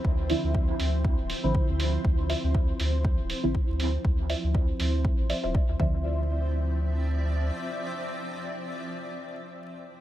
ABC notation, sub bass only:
X:1
M:4/4
L:1/16
Q:"Swing 16ths" 1/4=120
K:Dm
V:1 name="Sub bass" clef=bass
D,,2 z D,,2 z D,,3 D,,, z A,,, z D,,2 z | D,,2 z D,,2 z D,,3 D,,, z A,,, z D,,2 z | D,,2 z D,,2 z D,,2 z A,,, z D,,, z D,, D,,2- | D,,12 z4 |
z16 |]